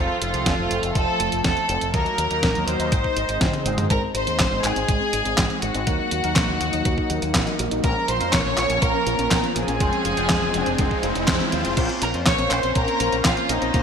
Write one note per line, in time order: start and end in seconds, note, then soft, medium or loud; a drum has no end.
0.00 0.31 F3 medium
0.00 1.92 F3 medium
0.00 0.31 A3 medium
0.00 1.92 A3 medium
0.00 0.31 C4 medium
0.00 1.90 C4 medium
0.00 0.20 F4 loud
0.00 0.31 A4 loud
0.21 0.32 F1 medium
0.21 0.91 F4 loud
0.21 closed hi-hat medium
0.34 0.44 C2 medium
0.34 1.91 F3 medium
0.34 1.91 A3 medium
0.34 1.91 C4 medium
0.34 1.91 A4 loud
0.34 closed hi-hat medium
0.46 0.56 F1 loud
0.46 kick loud
0.46 snare loud
0.46 closed hi-hat medium
0.58 0.69 F1 medium
0.71 0.81 F1 medium
0.71 closed hi-hat medium
0.83 0.93 F1 medium
0.83 closed hi-hat medium
0.95 1.06 F1 medium
0.95 1.44 A4 loud
0.95 kick loud
0.95 closed hi-hat medium
1.20 1.30 F1 medium
1.20 closed hi-hat medium
1.32 1.42 F1 medium
1.32 closed hi-hat medium
1.44 1.55 F1 loud
1.44 1.90 A4 medium
1.44 kick loud
1.44 snare loud
1.44 closed hi-hat medium
1.57 closed hi-hat soft
1.69 1.79 F1 loud
1.69 closed hi-hat medium
1.81 1.92 F1 medium
1.81 closed hi-hat medium
1.94 2.04 D#2 loud
1.94 2.28 F#3 medium
1.94 2.91 F#3 medium
1.94 2.28 A#3 medium
1.94 2.91 A#3 medium
1.94 2.28 D#4 medium
1.94 3.89 D#4 medium
1.94 2.28 A#4 loud
1.94 2.68 A#4 loud
1.94 kick loud
1.94 closed hi-hat medium
2.06 closed hi-hat soft
2.18 2.28 D#2 medium
2.18 closed hi-hat medium
2.31 2.41 D#2 medium
2.31 2.91 F#3 medium
2.31 2.91 A#3 medium
2.31 2.91 D#4 medium
2.31 2.91 A#4 loud
2.31 closed hi-hat medium
2.43 2.53 A#1 loud
2.43 kick loud
2.43 snare loud
2.43 closed hi-hat medium
2.55 2.65 D#2 medium
2.55 closed hi-hat soft
2.67 2.77 D#2 medium
2.67 3.66 C5 medium
2.67 closed hi-hat medium
2.80 2.90 D#2 medium
2.80 closed hi-hat medium
2.92 3.02 G#1 medium
2.92 3.89 G#3 medium
2.92 3.89 C4 medium
2.92 kick loud
2.92 closed hi-hat medium
3.04 kick medium
3.16 3.27 G#1 medium
3.16 closed hi-hat medium
3.29 3.39 G#1 medium
3.29 closed hi-hat medium
3.41 3.51 G#1 loud
3.41 kick loud
3.41 snare loud
3.41 closed hi-hat medium
3.41 high tom medium
3.53 closed hi-hat soft
3.53 high tom medium
3.65 3.76 G#1 loud
3.65 3.87 G#3 medium
3.65 3.87 C4 medium
3.65 3.87 D#4 medium
3.65 3.87 C5 medium
3.65 closed hi-hat medium
3.78 3.88 G#2 medium
3.78 closed hi-hat medium
3.78 mid tom medium
3.90 4.00 G#1 loud
3.90 3.97 G#3 medium
3.90 4.24 G#3 medium
3.90 5.85 G#3 medium
3.90 4.24 C4 medium
3.90 5.85 C4 medium
3.90 4.24 D#4 medium
3.90 5.85 D#4 medium
3.90 4.01 A#4 loud
3.90 4.24 C5 loud
3.90 4.02 A#5 medium
3.90 kick loud
3.90 closed hi-hat medium
3.90 riser medium
4.02 4.09 C4 medium
4.14 4.25 G#1 medium
4.14 4.25 D#4 medium
4.14 4.61 C5 loud
4.14 4.61 C6 medium
4.14 closed hi-hat medium
4.27 4.37 D#2 medium
4.27 5.84 G#3 medium
4.27 4.31 C4 medium
4.27 5.84 C4 medium
4.27 5.84 D#4 medium
4.27 5.84 C5 loud
4.27 closed hi-hat medium
4.39 4.50 G#1 loud
4.39 4.50 G#3 medium
4.39 kick loud
4.39 snare loud
4.39 clap medium
4.39 closed hi-hat medium
4.51 4.62 G#1 medium
4.51 4.59 C4 medium
4.64 4.74 G#1 medium
4.64 4.71 D#4 medium
4.64 5.62 G#4 loud
4.64 5.63 G#5 medium
4.64 clap medium
4.64 closed hi-hat medium
4.76 4.86 G#1 medium
4.76 4.80 C4 loud
4.76 closed hi-hat medium
4.88 4.99 G#1 medium
4.88 4.95 G#3 medium
4.88 kick loud
4.88 closed hi-hat medium
5.01 5.08 C4 medium
5.13 5.23 G#1 medium
5.13 5.24 D#4 medium
5.13 closed hi-hat medium
5.25 5.36 G#1 medium
5.25 5.30 C4 medium
5.25 closed hi-hat soft
5.38 5.48 G#1 loud
5.38 5.48 G#3 medium
5.38 kick loud
5.38 snare loud
5.38 clap medium
5.38 closed hi-hat medium
5.50 5.57 C4 medium
5.50 closed hi-hat soft
5.62 5.73 G#1 loud
5.62 5.69 D#4 medium
5.62 7.55 F#4 medium
5.62 7.56 F#5 medium
5.62 closed hi-hat medium
5.75 5.85 G#1 medium
5.75 5.79 C4 loud
5.75 closed hi-hat medium
5.87 5.97 D#2 loud
5.87 6.21 F#3 medium
5.87 7.82 F#3 medium
5.87 5.94 A#3 medium
5.87 6.21 A#3 medium
5.87 9.77 A#3 medium
5.87 6.21 D#4 medium
5.87 7.82 D#4 medium
5.87 6.21 A#4 loud
5.87 kick loud
5.87 closed hi-hat medium
5.99 6.06 D#4 medium
6.11 6.22 D#2 medium
6.11 6.22 F#4 medium
6.11 closed hi-hat medium
6.24 6.34 D#2 medium
6.24 7.81 F#3 medium
6.24 7.81 A#3 medium
6.24 6.28 D#4 medium
6.24 7.81 D#4 medium
6.24 7.81 A#4 loud
6.24 closed hi-hat medium
6.36 6.46 A#1 loud
6.36 6.47 A#3 medium
6.36 kick loud
6.36 snare loud
6.36 clap medium
6.36 closed hi-hat medium
6.48 6.59 D#2 medium
6.48 6.55 D#4 medium
6.61 6.71 D#2 medium
6.61 6.68 F#4 medium
6.61 closed hi-hat medium
6.73 6.83 D#2 medium
6.73 6.77 D#4 loud
6.73 closed hi-hat medium
6.85 6.96 D#2 medium
6.85 6.92 A#3 medium
6.85 kick loud
6.85 closed hi-hat medium
6.98 7.05 D#4 medium
6.98 kick medium
7.10 7.20 D#2 medium
7.10 7.20 F#4 medium
7.10 closed hi-hat medium
7.22 7.33 D#2 medium
7.22 7.26 D#4 medium
7.22 closed hi-hat medium
7.35 7.45 A#1 loud
7.35 7.45 A#3 medium
7.35 kick loud
7.35 snare loud
7.35 clap medium
7.35 closed hi-hat medium
7.47 7.54 D#4 medium
7.47 closed hi-hat soft
7.59 7.70 A#1 loud
7.59 7.66 F#4 medium
7.59 closed hi-hat medium
7.71 7.82 A#1 medium
7.71 7.76 D#4 loud
7.71 closed hi-hat medium
7.84 7.94 A#1 loud
7.84 8.18 F3 medium
7.84 11.73 F3 medium
7.84 8.18 A#3 medium
7.84 7.91 A#3 medium
7.84 9.79 C#4 medium
7.84 8.18 C#4 medium
7.84 8.18 A#4 loud
7.84 8.07 A#4 loud
7.84 8.07 A#5 medium
7.84 kick loud
7.84 closed hi-hat medium
7.96 8.03 C#4 medium
8.08 8.19 A#1 medium
8.08 8.19 F4 medium
8.08 8.33 C5 loud
8.08 8.33 C6 medium
8.08 closed hi-hat medium
8.21 8.31 F2 medium
8.21 9.78 F3 medium
8.21 9.78 A#3 medium
8.21 9.78 C#4 medium
8.21 8.25 C#4 medium
8.21 9.78 A#4 loud
8.21 closed hi-hat soft
8.33 8.43 A#1 loud
8.33 8.43 A#3 medium
8.33 8.82 C#5 loud
8.33 8.82 C#6 medium
8.33 kick loud
8.33 snare loud
8.33 clap medium
8.33 closed hi-hat medium
8.45 8.55 A#1 medium
8.45 8.52 C#4 medium
8.57 8.68 A#1 medium
8.57 8.65 F4 medium
8.57 clap medium
8.57 closed hi-hat medium
8.70 8.80 A#1 medium
8.70 8.74 C#4 loud
8.70 closed hi-hat medium
8.82 8.92 A#1 medium
8.82 8.89 A#3 medium
8.82 9.30 A#4 loud
8.82 9.31 A#5 medium
8.82 kick loud
8.82 closed hi-hat medium
8.95 9.01 C#4 medium
9.07 9.17 A#1 loud
9.07 9.17 F4 medium
9.07 closed hi-hat medium
9.19 9.29 A#1 medium
9.19 9.23 C#4 medium
9.19 closed hi-hat soft
9.31 9.41 A#1 loud
9.31 9.42 A#3 medium
9.31 9.43 A#4 medium
9.31 9.43 A#5 medium
9.31 kick loud
9.31 snare loud
9.31 clap medium
9.31 closed hi-hat medium
9.44 9.51 C#4 medium
9.44 closed hi-hat soft
9.56 9.66 A#1 loud
9.56 9.63 F4 medium
9.56 11.24 G#4 medium
9.56 11.24 G#5 medium
9.56 closed hi-hat medium
9.68 9.78 A#1 medium
9.68 9.72 C#4 loud
9.68 closed hi-hat soft
9.80 9.91 F1 loud
9.80 9.87 G#3 medium
9.80 10.14 G#3 medium
9.80 11.75 G#3 medium
9.80 10.14 C4 medium
9.80 11.75 C4 medium
9.80 10.14 F4 medium
9.80 10.14 C5 loud
9.80 kick loud
9.80 closed hi-hat medium
9.93 10.00 C4 medium
9.93 closed hi-hat soft
10.05 10.15 F1 medium
10.05 10.15 F4 medium
10.05 closed hi-hat medium
10.17 10.27 F1 medium
10.17 11.50 G#3 medium
10.17 10.22 C4 medium
10.17 11.50 C4 medium
10.17 11.50 F4 medium
10.17 11.50 C5 loud
10.17 closed hi-hat soft
10.29 10.40 F2 loud
10.29 10.40 G#3 medium
10.29 kick loud
10.29 snare loud
10.29 clap medium
10.29 closed hi-hat medium
10.42 10.52 F1 medium
10.42 10.49 C4 medium
10.54 10.64 F1 medium
10.54 10.61 F4 medium
10.54 closed hi-hat medium
10.66 10.77 F1 medium
10.66 10.71 C4 loud
10.66 closed hi-hat soft
10.78 10.89 F1 loud
10.78 10.86 G#3 medium
10.78 kick loud
10.78 closed hi-hat medium
10.91 10.98 C4 medium
10.91 kick medium
11.03 11.14 F1 loud
11.03 11.14 F4 medium
11.03 closed hi-hat medium
11.15 11.26 F1 medium
11.15 11.20 C4 medium
11.15 closed hi-hat soft
11.28 11.38 F2 loud
11.28 11.38 G#3 medium
11.28 kick loud
11.28 snare loud
11.28 clap medium
11.28 closed hi-hat medium
11.40 11.47 C4 medium
11.40 closed hi-hat soft
11.52 11.63 D#2 loud
11.52 11.74 G#3 medium
11.52 11.74 C4 medium
11.52 11.74 F4 medium
11.52 11.60 F4 medium
11.52 11.74 C5 medium
11.52 closed hi-hat medium
11.65 11.75 F1 medium
11.65 11.69 C4 loud
11.65 closed hi-hat medium
11.77 11.87 A#1 loud
11.77 11.84 A#3 medium
11.77 12.11 A#3 medium
11.77 13.83 A#3 medium
11.77 12.11 C#4 medium
11.77 13.83 C#4 medium
11.77 12.11 F4 medium
11.77 12.11 C5 loud
11.77 13.83 C5 medium
11.77 kick loud
11.77 closed hi-hat medium
11.77 crash loud
11.89 11.97 C4 medium
11.89 closed hi-hat soft
12.02 12.12 A#1 loud
12.02 12.12 C#4 medium
12.02 12.13 A#4 loud
12.02 12.13 A#5 medium
12.02 closed hi-hat medium
12.14 12.24 F2 medium
12.14 13.71 A#3 medium
12.14 12.18 C4 medium
12.14 13.71 C#4 medium
12.14 13.71 F4 medium
12.14 13.71 C5 loud
12.14 closed hi-hat soft
12.26 12.37 A#1 loud
12.26 12.37 A#3 medium
12.26 12.49 C#5 loud
12.26 12.50 C#6 medium
12.26 kick loud
12.26 snare loud
12.26 clap medium
12.26 closed hi-hat medium
12.38 12.49 A#1 medium
12.38 12.46 C4 medium
12.38 closed hi-hat soft
12.51 12.61 A#1 medium
12.51 12.58 C#4 medium
12.51 12.76 C5 loud
12.51 12.76 C6 medium
12.51 clap medium
12.51 closed hi-hat medium
12.63 12.74 A#1 medium
12.63 12.67 C4 loud
12.63 closed hi-hat soft
12.75 12.86 A#1 loud
12.75 12.83 A#3 medium
12.75 13.21 A#4 loud
12.75 13.22 A#5 medium
12.75 kick loud
12.75 closed hi-hat medium
12.88 12.95 C4 medium
12.88 closed hi-hat soft
13.00 13.10 A#1 loud
13.00 13.11 C#4 medium
13.00 closed hi-hat loud
13.12 13.23 A#1 medium
13.12 13.17 C4 medium
13.12 closed hi-hat soft
13.25 13.35 A#1 loud
13.25 13.35 A#3 medium
13.25 13.49 F4 medium
13.25 13.50 F5 medium
13.25 kick loud
13.25 snare loud
13.25 clap loud
13.25 closed hi-hat medium
13.37 13.44 C4 medium
13.37 closed hi-hat soft
13.49 13.60 A#1 loud
13.49 13.56 C#4 medium
13.49 13.83 D#4 medium
13.49 13.83 D#5 medium
13.49 closed hi-hat loud
13.62 13.72 A#1 medium
13.62 13.66 C4 loud
13.62 closed hi-hat soft
13.74 13.83 A#1 loud
13.74 13.83 A#3 medium
13.74 13.81 A#3 medium
13.74 13.83 C#4 medium
13.74 13.83 F4 medium
13.74 13.83 C5 loud
13.74 kick loud
13.74 closed hi-hat medium